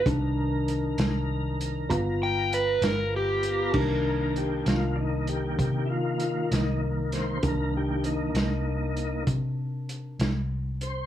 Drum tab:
CC |------------|x-----------|------------|
HH |x-xx-xx-xx-x|--xx-xx-xx-x|x-xx-xx-xx-x|
SD |---o-----o--|---o-----o-o|---o-----o--|
BD |o-----o-----|o-----o-----|o-----o-----|